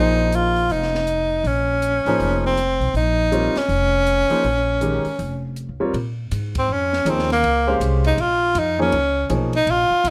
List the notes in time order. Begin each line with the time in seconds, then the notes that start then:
Already playing: A#1 F3 A#3 D#4 G#4 C5
0.32 F4, closed hi-hat
0.56 open hi-hat
0.69 F1 D#4, open hi-hat
0.83 snare
0.95 snare
1.07 closed hi-hat
1.44 A#1 C#4, open hi-hat
1.82 closed hi-hat
2.06 A1 F3 A#3 D#4 G#4 C5, open hi-hat
2.19 F1, open hi-hat
2.46 C4
2.57 closed hi-hat
2.80 B1, open hi-hat
2.94 A#1 D#4, open hi-hat
3.32 G3 C4 F4 A#4 C#5, closed hi-hat
3.55 C#4, muted upright bass stroke, snare, open hi-hat
3.69 F1, open hi-hat
4.07 closed hi-hat
4.30 F3 A#3 D#4 G#4 C5, muted upright bass stroke, open hi-hat
4.44 A#1, open hi-hat
4.81 D#3 G#3 C#4 G4 A#4, closed hi-hat
5.05 muted upright bass stroke, open hi-hat
5.19 F1, open hi-hat
5.56 closed hi-hat
5.69 C#2
5.80 F2 G3 C4 F4 A#4 C#5
5.93 A#2, ride
6.31 G#2, hi-hat pedal, ride
6.55 C4, kick, ride
6.68 F2 C#4
6.93 snare
7.05 D#2 F3 A#3 D#4 G#4 C#5, hi-hat pedal, ride
7.09 C4
7.19 snare
7.30 A#3, snare, ride
7.43 C#2, ride
7.67 G#3 C#4 G4 C5 F5
7.80 C2, hi-hat pedal, ride
8.04 D#4, ride
8.18 A#1 F4, ride
8.55 F2 D#4, hi-hat pedal, ride
8.79 F3 A#3 C#4 D#4 G#4 C#5
8.92 C#2, ride
9.29 B1 F3 A#3 D#4 G#4 C#5, hi-hat pedal, ride
9.53 D#4, ride
9.67 A#1, ride
9.71 F4
9.90 muted upright bass stroke
10.04 C2, hi-hat pedal, ride